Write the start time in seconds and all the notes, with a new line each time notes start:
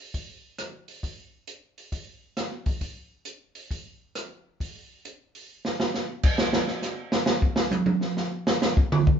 0.14 kick, open hi-hat
0.58 cross-stick, closed hi-hat
0.88 open hi-hat
1.03 kick, open hi-hat
1.47 closed hi-hat
1.78 open hi-hat
1.92 kick, open hi-hat
2.37 cross-stick, snare, closed hi-hat
2.66 kick, open hi-hat
2.81 kick, open hi-hat
3.25 closed hi-hat
3.55 open hi-hat
3.71 kick, open hi-hat
4.15 cross-stick, closed hi-hat
4.60 kick, open hi-hat
5.05 closed hi-hat
5.35 open hi-hat
5.65 snare
5.80 snare
5.94 snare
6.23 kick, crash
6.38 snare
6.53 snare
6.68 snare
6.82 snare, hi-hat pedal
7.12 snare
7.26 snare
7.42 kick
7.56 snare
7.71 hi-hat pedal, high tom
7.86 high tom
8.01 snare
8.17 snare
8.47 snare
8.62 snare, hi-hat pedal
8.77 kick
8.92 mid tom
9.07 kick